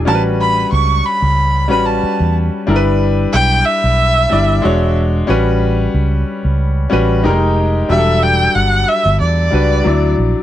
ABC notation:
X:1
M:4/4
L:1/16
Q:"Swing 16ths" 1/4=92
K:Amix
V:1 name="Erhu"
a2 b2 c'2 b4 b a3 z2 | z4 g2 e8 z2 | z16 | e2 g2 f2 e2 d6 z2 |]
V:2 name="Grand piano"
[G,CF_B=B]6 z4 [G,CFB]4 z2 | [G,DE_B=B]6 z4 [G,DEd]2 [^G,DFc]4 | [G,CFB]6 z4 [G,CFB]2 [G,_A,_EG_B]4 | [F,G,DGA]6 z4 [G,DFB]2 [F,DEd]4 |]
V:3 name="Fingered electric bass" clef=bass
A,,,4 C,,2 z C,,3 A,,,2 z E,,2 z | G,,,4 B,,,2 z B,,,3 G,,,2 E,,,4 | A,,,4 C,,2 z C,,3 A,,,2 =F,,,4 | E,,,4 G,,,2 z G,,, E,,2 C,,2 D,,2 _B,,, z |]